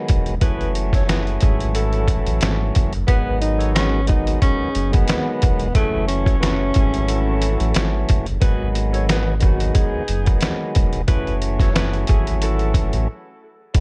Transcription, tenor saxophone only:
3.08 3.38 B3 medium
3.41 3.72 D#4 medium
3.75 4.05 C#4 medium
4.08 4.38 D#4 medium
4.42 4.90 C#4 medium
4.94 5.71 B3 medium
5.76 6.05 A3 loud
6.08 7.71 C#4 medium

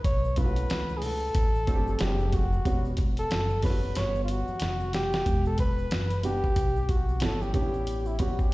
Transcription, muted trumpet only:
0.05 0.40 C#5 loud
0.38 0.99 B4 loud
0.97 1.05 G#4 medium
1.03 2.03 A4 loud
2.01 2.36 G4 medium
2.34 2.90 F#4 loud
3.19 3.61 A4 medium
3.64 3.99 B4 medium
3.97 4.23 C#5 loud
4.24 4.32 F4 medium
4.31 4.94 F#4 loud
4.95 5.43 G4 loud
5.47 5.59 A4 medium
5.60 6.20 B4 loud
6.25 6.91 G4 loud
6.90 7.24 F#4 medium
7.23 7.43 A4 medium
7.42 7.55 G4 medium
7.55 8.08 G4 medium
8.07 8.21 E4 medium
8.20 8.41 F#4 medium
8.39 8.54 G4 medium

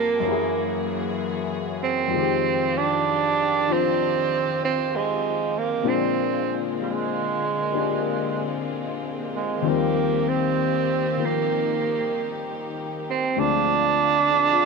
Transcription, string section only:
0.00 0.23 F3 medium
0.00 2.08 A#3 medium
0.00 0.20 C4 medium
0.00 0.21 G4 medium
0.00 0.22 A5 medium
0.24 2.09 C#3 medium
0.24 2.09 E3 medium
0.24 2.09 F#4 medium
0.24 2.09 G#4 medium
2.11 5.80 D#3 medium
2.11 14.65 C4 medium
2.11 3.96 F4 medium
2.11 5.80 G4 medium
3.99 5.82 F4 medium
5.85 9.58 D3 medium
5.85 9.58 G#3 medium
5.85 13.34 A#3 medium
5.85 11.46 F4 medium
9.62 13.33 D#3 medium
9.62 13.33 G4 medium
11.50 13.35 D#4 medium
13.36 14.65 D3 medium
13.36 14.65 F3 medium
13.36 14.65 G#3 medium
13.36 14.65 F4 medium

